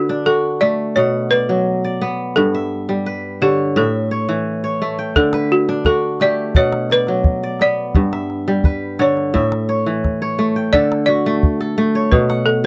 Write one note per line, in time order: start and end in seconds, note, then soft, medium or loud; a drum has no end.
0.00 1.01 D3 medium
0.00 0.24 F#4 medium
0.00 0.97 B4 medium
0.09 1.77 D4 medium
0.26 1.72 F#4 medium
0.26 0.59 A4 medium
0.61 2.61 A3 medium
0.61 0.97 D5 medium
0.96 2.41 B2 medium
0.96 1.32 C#5 medium
0.96 1.93 F#5 medium
1.31 2.39 B4 medium
1.31 1.84 D5 medium
1.49 2.41 F#3 medium
1.84 2.95 D5 medium
2.01 3.88 B3 medium
2.36 3.81 G2 medium
2.36 3.37 A4 medium
2.55 3.58 E5 medium
2.89 3.46 G3 medium
3.06 4.29 B4 medium
3.42 3.81 D3 medium
3.42 3.74 G4 medium
3.42 4.11 C#5 medium
3.76 5.21 A2 medium
3.76 4.78 A4 medium
3.76 4.79 E5 medium
4.11 4.63 C#5 medium
4.29 5.21 E3 medium
4.64 5.22 C#5 medium
4.82 6.20 A3 medium
4.99 5.92 G5 medium
5.16 6.61 D3 medium
5.16 5.52 A4 medium
5.16 calabash thump medium
5.33 6.57 B4 medium
5.33 calabash click soft
5.52 5.84 F#4 medium
5.69 7.37 D4 medium
5.85 7.32 F#4 medium
5.85 6.22 A4 medium
5.85 calabash thump medium
6.20 8.21 A3 medium
6.20 7.14 G4 medium
6.20 6.57 D5 medium
6.20 calabash click soft
6.55 8.00 B2 medium
6.55 6.89 C#5 medium
6.55 7.52 F#5 medium
6.55 calabash thump medium
6.73 calabash click medium
6.90 7.57 B4 medium
6.90 7.43 D5 medium
6.90 calabash click soft
7.07 8.00 F#3 medium
7.07 calabash click soft
7.24 calabash thump medium
7.43 8.54 D5 medium
7.60 9.47 B3 medium
7.60 9.05 D5 loud
7.60 calabash click soft
7.95 9.40 G2 medium
7.95 calabash thump medium
7.95 calabash click soft
8.13 9.16 E5 medium
8.13 calabash click soft
8.30 calabash click soft
8.48 9.05 G3 medium
8.48 calabash click soft
8.64 9.88 B4 medium
8.64 calabash thump medium
8.99 9.40 D3 medium
8.99 9.68 C#5 medium
8.99 10.36 C#5 medium
8.99 calabash click soft
9.17 calabash click soft
9.34 10.79 A2 medium
9.34 10.37 E5 medium
9.34 calabash thump medium
9.52 calabash click soft
9.69 10.21 C#5 medium
9.69 calabash click soft
9.86 10.79 E3 medium
10.04 calabash thump medium
10.04 calabash click soft
10.22 10.80 C#5 medium
10.22 calabash click soft
10.39 11.26 A3 medium
10.39 calabash click soft
10.56 11.14 G5 medium
10.73 12.17 D3 medium
10.73 11.60 A4 medium
10.73 11.05 D5 loud
10.73 calabash thump medium
10.92 calabash click soft
11.06 12.55 F#4 medium
11.06 12.14 D5 loud
11.26 11.77 A3 medium
11.43 calabash thump medium
11.61 12.66 A4 medium
11.61 calabash click soft
11.78 12.66 A3 medium
11.78 calabash click soft
11.95 12.66 C#5 medium
12.12 12.66 B2 medium
12.12 12.48 B4 medium
12.12 calabash thump medium
12.12 calabash click soft
12.29 12.66 F#5 medium
12.29 calabash click soft
12.46 12.63 A4 medium